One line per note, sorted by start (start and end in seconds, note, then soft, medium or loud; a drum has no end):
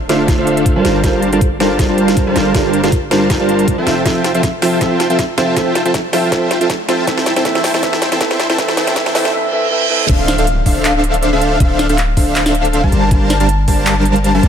0.00 0.83 D1 medium
0.08 0.35 D3 medium
0.08 0.36 A3 medium
0.08 0.36 D4 medium
0.08 0.36 F4 medium
0.08 0.36 A4 medium
0.08 0.36 C5 medium
0.08 0.36 E5 medium
0.08 0.36 F5 loud
0.08 snare medium
0.08 closed hi-hat medium
0.28 kick medium
0.28 snare medium
0.28 closed hi-hat medium
0.37 0.73 D3 medium
0.37 0.74 A3 medium
0.37 0.74 D4 medium
0.37 0.74 F4 medium
0.37 0.74 A4 medium
0.37 0.74 C5 medium
0.37 0.74 E5 medium
0.37 0.74 F5 medium
0.47 closed hi-hat medium
0.57 closed hi-hat medium
0.66 kick medium
0.66 closed hi-hat medium
0.75 1.01 G3 medium
0.75 1.02 G3 medium
0.75 1.02 D4 medium
0.75 1.01 F4 medium
0.75 1.02 A4 medium
0.75 1.02 A#4 medium
0.75 1.02 C5 medium
0.75 1.02 F5 medium
0.75 1.02 A5 medium
0.85 2.34 G1 medium
0.85 snare medium
0.85 closed hi-hat medium
1.03 1.17 G3 medium
1.03 1.30 G3 medium
1.03 1.30 D4 medium
1.03 1.17 F4 medium
1.03 1.18 A4 medium
1.03 1.30 A#4 medium
1.03 1.18 A#4 medium
1.03 1.30 C5 medium
1.03 1.18 C5 loud
1.03 1.30 F5 medium
1.03 1.30 A5 medium
1.03 kick medium
1.03 snare medium
1.03 closed hi-hat medium
1.22 closed hi-hat medium
1.32 1.45 G3 medium
1.32 1.40 G3 medium
1.32 1.40 D4 medium
1.32 1.45 F4 medium
1.32 1.46 A4 medium
1.32 1.40 A#4 medium
1.32 1.46 A#4 medium
1.32 1.40 C5 medium
1.32 1.46 C5 medium
1.32 1.40 F5 medium
1.32 1.40 A5 loud
1.32 closed hi-hat medium
1.41 kick loud
1.41 closed hi-hat medium
1.59 1.86 G3 medium
1.59 1.87 G3 medium
1.59 1.87 D4 medium
1.59 1.87 F4 medium
1.59 1.87 A4 medium
1.59 1.87 A#4 medium
1.59 1.87 C5 medium
1.59 1.87 F5 medium
1.59 1.87 A5 loud
1.59 snare medium
1.59 closed hi-hat medium
1.79 kick medium
1.79 snare medium
1.79 closed hi-hat medium
1.88 2.24 G3 medium
1.88 2.25 G3 medium
1.88 2.25 D4 medium
1.88 2.24 F4 medium
1.88 2.25 A#4 medium
1.88 2.25 C5 medium
1.88 2.25 F5 medium
1.88 2.24 A5 medium
1.88 2.25 A5 loud
1.98 closed hi-hat medium
2.08 snare medium
2.08 closed hi-hat medium
2.17 kick medium
2.17 closed hi-hat medium
2.26 2.52 G3 medium
2.26 2.53 G3 medium
2.26 2.53 D4 medium
2.26 2.52 F4 medium
2.26 2.52 A4 medium
2.26 2.53 A#4 medium
2.26 2.53 C5 medium
2.26 2.53 F5 medium
2.26 2.53 A5 medium
2.36 3.85 G1 medium
2.36 snare medium
2.36 closed hi-hat medium
2.53 2.68 G3 medium
2.53 2.81 G3 medium
2.53 2.81 D4 medium
2.53 2.68 F4 medium
2.53 2.68 A4 medium
2.53 2.81 A#4 medium
2.53 2.69 A#4 medium
2.53 2.81 C5 medium
2.53 2.69 C5 loud
2.53 2.81 F5 medium
2.53 2.81 A5 medium
2.53 kick medium
2.53 snare medium
2.53 closed hi-hat medium
2.73 closed hi-hat medium
2.82 2.96 G3 medium
2.82 2.91 G3 medium
2.82 2.91 D4 medium
2.82 2.96 F4 medium
2.82 2.97 A4 medium
2.82 2.91 A#4 medium
2.82 2.97 A#4 medium
2.82 2.91 C5 medium
2.82 2.97 C5 medium
2.82 2.91 F5 medium
2.82 2.91 A5 loud
2.82 snare medium
2.82 closed hi-hat medium
2.92 kick loud
2.92 closed hi-hat medium
3.10 3.37 G3 medium
3.10 3.38 G3 medium
3.10 3.38 D4 medium
3.10 3.38 F4 medium
3.10 3.38 A4 medium
3.10 3.38 A#4 medium
3.10 3.38 C5 medium
3.10 3.38 C5 loud
3.10 3.38 F5 medium
3.10 3.38 A5 loud
3.10 snare medium
3.10 closed hi-hat medium
3.30 kick medium
3.30 snare medium
3.30 closed hi-hat medium
3.39 3.75 G3 medium
3.39 3.76 G3 medium
3.39 3.75 D4 medium
3.39 3.75 F4 medium
3.39 3.75 A#4 medium
3.39 3.76 A#4 medium
3.39 3.76 C5 medium
3.39 3.75 F5 medium
3.39 3.75 A5 medium
3.39 3.76 A5 loud
3.49 closed hi-hat medium
3.59 closed hi-hat medium
3.68 kick medium
3.68 closed hi-hat medium
3.77 4.03 F3 medium
3.77 4.03 C4 medium
3.77 4.03 F4 medium
3.77 4.04 A4 medium
3.77 4.04 C5 medium
3.77 4.03 E5 medium
3.77 4.04 E5 medium
3.77 4.03 G5 medium
3.77 4.04 A5 medium
3.87 5.36 F1 medium
3.87 snare medium
3.87 closed hi-hat medium
4.04 4.19 F3 medium
4.04 4.19 C4 medium
4.04 4.32 F4 medium
4.04 4.20 A4 medium
4.04 4.32 C5 medium
4.04 4.32 E5 medium
4.04 4.20 E5 loud
4.04 4.32 G5 medium
4.04 4.32 A5 medium
4.04 kick loud
4.04 snare medium
4.04 closed hi-hat medium
4.04 riser medium
4.24 snare medium
4.24 closed hi-hat medium
4.34 4.47 F3 medium
4.34 4.48 C4 medium
4.34 4.42 F4 medium
4.34 4.48 A4 medium
4.34 4.42 C5 medium
4.34 4.42 E5 medium
4.34 4.48 E5 medium
4.34 4.42 G5 medium
4.34 4.42 A5 loud
4.34 closed hi-hat medium
4.43 kick loud
4.43 snare medium
4.43 closed hi-hat medium
4.61 4.79 F3 medium
4.61 4.79 C4 medium
4.61 4.80 F4 medium
4.61 4.80 A4 medium
4.61 4.80 C5 medium
4.61 4.80 E5 medium
4.61 4.80 G5 medium
4.61 4.80 A5 medium
4.61 snare medium
4.61 open hi-hat medium
4.80 4.94 F3 loud
4.80 4.95 C4 medium
4.80 5.08 F4 medium
4.80 4.95 A4 medium
4.80 5.08 C5 medium
4.80 5.08 E5 medium
4.80 4.96 E5 loud
4.80 5.08 G5 medium
4.80 5.08 A5 medium
4.80 kick loud
4.80 snare medium
4.80 closed hi-hat medium
5.00 snare medium
5.00 closed hi-hat medium
5.09 5.23 F3 medium
5.09 5.23 C4 medium
5.09 5.17 F4 medium
5.09 5.23 A4 medium
5.09 5.17 C5 medium
5.09 5.17 E5 medium
5.09 5.24 E5 medium
5.09 5.17 G5 medium
5.09 5.17 A5 medium
5.09 closed hi-hat medium
5.19 kick loud
5.19 snare medium
5.19 closed hi-hat medium
5.37 6.87 F1 medium
5.37 5.54 F3 medium
5.37 5.55 C4 medium
5.37 5.55 F4 medium
5.37 5.55 A4 medium
5.37 5.55 C5 medium
5.37 5.55 E5 medium
5.37 5.56 E5 medium
5.37 5.55 G5 medium
5.37 5.55 A5 loud
5.37 snare medium
5.37 closed hi-hat medium
5.55 5.70 F3 medium
5.55 5.70 C4 medium
5.55 5.83 F4 medium
5.55 5.71 A4 medium
5.55 5.83 C5 medium
5.55 5.83 E5 medium
5.55 5.71 E5 loud
5.55 5.83 G5 medium
5.55 5.83 A5 medium
5.55 kick medium
5.55 snare medium
5.55 closed hi-hat medium
5.75 snare medium
5.75 closed hi-hat medium
5.84 5.98 F3 medium
5.84 5.98 C4 medium
5.84 5.93 F4 medium
5.84 5.99 A4 medium
5.84 5.93 C5 medium
5.84 5.93 E5 medium
5.84 5.99 E5 medium
5.84 5.93 G5 medium
5.84 5.93 A5 loud
5.84 closed hi-hat medium
5.94 kick loud
5.94 snare medium
5.94 closed hi-hat medium
6.12 6.30 F3 medium
6.12 6.30 C4 medium
6.12 6.31 F4 medium
6.12 6.31 A4 medium
6.12 6.31 C5 medium
6.12 6.31 E5 medium
6.12 6.31 G5 medium
6.12 6.31 A5 medium
6.12 snare medium
6.12 open hi-hat medium
6.31 6.45 F3 loud
6.31 6.46 C4 medium
6.31 6.59 F4 medium
6.31 6.46 A4 medium
6.31 6.59 C5 medium
6.31 6.59 E5 medium
6.31 6.46 E5 loud
6.31 6.59 G5 medium
6.31 6.59 A5 medium
6.31 kick loud
6.31 snare medium
6.31 closed hi-hat medium
6.51 snare medium
6.51 closed hi-hat medium
6.60 6.74 F3 medium
6.60 6.74 C4 medium
6.60 6.68 F4 medium
6.60 6.74 A4 medium
6.60 6.68 C5 medium
6.60 6.68 E5 medium
6.60 6.75 E5 medium
6.60 6.68 G5 medium
6.60 6.68 A5 loud
6.60 closed hi-hat medium
6.70 kick loud
6.70 snare medium
6.70 closed hi-hat medium
6.87 7.06 F3 medium
6.87 7.06 C4 medium
6.87 7.06 F4 medium
6.87 7.06 A4 medium
6.87 7.06 C5 medium
6.87 7.06 E5 medium
6.87 7.07 E5 medium
6.87 7.06 G5 medium
6.87 7.06 A5 loud
6.87 snare medium
6.87 closed hi-hat medium
7.06 8.57 C2 medium
7.06 7.21 E3 medium
7.06 7.21 C4 medium
7.06 7.34 E4 medium
7.06 7.21 A4 medium
7.06 7.34 C5 medium
7.06 7.34 E5 medium
7.06 7.22 E5 loud
7.06 7.34 G5 medium
7.06 7.34 A5 medium
7.06 kick loud
7.06 snare medium
7.06 closed hi-hat medium
7.18 snare medium
7.26 snare loud
7.26 closed hi-hat medium
7.35 7.43 E3 medium
7.35 7.44 C4 medium
7.35 7.44 E4 medium
7.35 7.44 A4 medium
7.35 7.44 C5 medium
7.35 7.44 E5 medium
7.35 7.44 G5 medium
7.35 7.44 A5 loud
7.35 snare medium
7.35 closed hi-hat medium
7.44 7.59 E3 loud
7.44 7.59 C4 medium
7.44 7.72 E4 medium
7.44 7.59 A4 medium
7.44 7.72 C5 medium
7.44 7.72 E5 medium
7.44 7.60 E5 loud
7.44 7.72 G5 medium
7.44 7.72 A5 medium
7.44 kick loud
7.44 snare loud
7.44 closed hi-hat medium
7.55 snare medium
7.64 snare loud
7.64 open hi-hat loud
7.73 7.81 E3 medium
7.73 7.81 C4 medium
7.73 7.82 E4 medium
7.73 7.82 A4 medium
7.73 7.82 C5 medium
7.73 7.82 E5 medium
7.73 7.82 G5 medium
7.73 7.82 A5 loud
7.73 snare medium
7.82 7.96 E3 loud
7.82 7.97 C4 medium
7.82 8.09 E4 medium
7.82 7.97 A4 medium
7.82 8.10 C5 medium
7.82 8.10 E5 medium
7.82 7.97 E5 loud
7.82 8.09 G5 medium
7.82 8.10 A5 medium
7.82 kick medium
7.82 snare loud
7.82 closed hi-hat medium
7.93 snare medium
8.02 snare medium
8.02 closed hi-hat medium
8.11 8.19 E3 medium
8.11 8.19 C4 medium
8.11 8.19 E4 loud
8.11 8.20 A4 medium
8.11 8.19 C5 medium
8.11 8.19 E5 medium
8.11 8.20 E5 medium
8.11 8.19 G5 medium
8.11 8.19 A5 loud
8.11 snare medium
8.11 closed hi-hat medium
8.20 8.34 E3 loud
8.20 8.34 C4 medium
8.20 8.47 E4 medium
8.20 8.35 A4 medium
8.20 8.47 C5 medium
8.20 8.47 E5 medium
8.20 8.35 E5 loud
8.20 8.47 G5 medium
8.20 8.47 A5 medium
8.20 kick loud
8.20 snare loud
8.20 closed hi-hat medium
8.31 snare medium
8.40 snare medium
8.40 closed hi-hat medium
8.49 8.56 E3 medium
8.49 8.57 C4 medium
8.49 8.57 E4 medium
8.49 8.57 A4 medium
8.49 8.57 C5 medium
8.49 8.57 E5 medium
8.49 8.58 E5 medium
8.49 8.57 G5 medium
8.49 8.57 A5 loud
8.49 snare medium
8.57 9.34 C2 medium
8.57 8.72 E3 loud
8.57 8.72 C4 medium
8.57 8.76 E4 medium
8.57 8.72 A4 medium
8.57 8.76 C5 medium
8.57 8.76 E5 medium
8.57 8.73 E5 loud
8.57 8.76 G5 medium
8.57 8.76 A5 medium
8.57 kick loud
8.57 snare loud
8.57 closed hi-hat medium
8.69 snare medium
8.76 8.91 E3 loud
8.76 8.91 C4 loud
8.76 8.95 E4 medium
8.76 8.91 A4 loud
8.76 8.95 C5 medium
8.76 8.95 E5 medium
8.76 8.92 E5 loud
8.76 8.95 G5 medium
8.76 8.95 A5 medium
8.76 snare loud
8.76 closed hi-hat medium
8.87 snare medium
8.87 closed hi-hat medium
8.95 9.10 E3 loud
8.95 9.10 C4 loud
8.95 9.14 E4 medium
8.95 9.10 A4 loud
8.95 9.14 C5 medium
8.95 9.14 E5 medium
8.95 9.11 E5 loud
8.95 9.14 G5 medium
8.95 9.14 A5 medium
8.95 kick loud
8.95 snare loud
8.95 closed hi-hat medium
9.06 snare medium
9.14 9.28 E3 loud
9.14 9.29 C4 loud
9.14 9.32 E4 medium
9.14 9.29 A4 loud
9.14 9.32 C5 medium
9.14 9.32 E5 medium
9.14 9.29 E5 loud
9.14 9.32 G5 medium
9.14 9.32 A5 medium
9.14 snare loud
9.14 open hi-hat loud
9.25 snare medium
9.33 9.47 E3 loud
9.33 9.48 C4 loud
9.33 9.48 A4 loud
9.33 9.48 E5 loud
9.33 reverse cymbal medium
9.52 9.66 E3 loud
9.52 9.66 C4 loud
9.52 9.67 A4 loud
9.52 9.67 E5 loud
9.71 9.85 E3 loud
9.71 9.85 C4 medium
9.71 9.86 A4 loud
9.71 9.86 E5 loud
9.90 10.04 E3 loud
9.90 10.04 C4 medium
9.90 10.05 A4 loud
9.90 10.05 E5 loud
10.09 11.59 D1 medium
10.09 10.36 D4 medium
10.09 10.36 A4 medium
10.09 10.36 C5 medium
10.09 10.36 E5 medium
10.09 10.36 F5 medium
10.09 kick loud
10.09 closed hi-hat medium
10.09 crash loud
10.09 impact medium
10.28 snare medium
10.28 closed hi-hat medium
10.38 10.46 D4 medium
10.38 10.46 A4 medium
10.38 10.46 C5 medium
10.38 10.46 E5 medium
10.38 10.46 F5 loud
10.38 closed hi-hat medium
10.47 closed hi-hat medium
10.66 10.93 D4 medium
10.66 10.93 A4 medium
10.66 10.93 C5 medium
10.66 10.93 E5 medium
10.66 10.93 F5 loud
10.66 kick medium
10.66 open hi-hat medium
10.85 clap loud
10.85 closed hi-hat medium
10.95 11.30 D4 medium
10.95 11.30 A4 medium
10.95 11.30 C5 medium
10.95 11.30 E5 medium
10.95 11.30 F5 medium
10.95 11.30 F5 loud
11.04 closed hi-hat medium
11.14 closed hi-hat medium
11.23 closed hi-hat medium
11.33 11.58 D4 medium
11.33 11.58 A4 medium
11.33 11.58 C5 medium
11.33 11.58 E5 medium
11.33 11.58 F5 medium
11.41 closed hi-hat medium
11.60 12.91 D1 medium
11.60 11.87 D4 medium
11.60 11.87 A4 medium
11.60 11.87 C5 medium
11.60 11.87 E5 medium
11.60 11.87 F5 medium
11.60 kick loud
11.60 closed hi-hat medium
11.79 snare medium
11.79 closed hi-hat medium
11.89 11.97 D4 loud
11.89 11.97 A4 medium
11.89 11.97 C5 medium
11.89 11.97 E5 medium
11.89 11.97 F5 loud
11.89 closed hi-hat medium
11.98 clap medium
11.98 closed hi-hat medium
12.17 12.43 D4 medium
12.17 12.43 A4 medium
12.17 12.43 C5 medium
12.17 12.43 E5 medium
12.17 12.43 F5 loud
12.17 12.44 F5 loud
12.17 kick medium
12.17 open hi-hat medium
12.36 clap loud
12.36 closed hi-hat medium
12.46 12.81 D4 medium
12.46 12.81 A4 medium
12.46 12.81 C5 medium
12.46 12.81 E5 medium
12.46 12.81 F5 loud
12.46 snare medium
12.55 closed hi-hat medium
12.65 closed hi-hat medium
12.73 closed hi-hat medium
12.84 13.09 G3 medium
12.84 13.09 D4 medium
12.84 13.09 A#4 medium
12.84 13.09 C5 medium
12.84 13.09 F5 medium
12.84 13.09 A5 medium
12.84 kick medium
12.92 14.42 G1 medium
12.92 closed hi-hat medium
13.11 13.38 G3 medium
13.11 13.38 D4 medium
13.11 13.38 A#4 medium
13.11 13.38 C5 medium
13.11 13.38 F5 medium
13.11 13.38 A5 medium
13.11 kick loud
13.11 closed hi-hat medium
13.30 snare medium
13.30 closed hi-hat medium
13.40 13.48 G3 loud
13.40 13.48 D4 medium
13.40 13.48 A#4 medium
13.40 13.48 C5 medium
13.40 13.48 F5 medium
13.40 13.48 A5 loud
13.40 closed hi-hat medium
13.49 closed hi-hat medium
13.68 13.94 G3 medium
13.68 13.94 D4 medium
13.68 13.94 A#4 medium
13.68 13.94 C5 medium
13.68 13.94 F5 medium
13.68 13.94 A5 loud
13.68 kick medium
13.68 open hi-hat medium
13.87 clap loud
13.87 closed hi-hat medium
13.97 14.32 G3 medium
13.97 14.32 D4 medium
13.97 14.32 A#4 medium
13.97 14.32 C5 medium
13.97 14.32 F5 medium
13.97 14.32 A5 loud
14.05 closed hi-hat medium
14.16 closed hi-hat medium
14.24 closed hi-hat medium
14.35 14.48 G3 medium
14.35 14.48 D4 medium
14.35 14.48 A#4 medium
14.35 14.48 C5 medium
14.35 14.48 F5 medium
14.35 14.48 A5 medium
14.43 14.48 G1 medium
14.43 closed hi-hat medium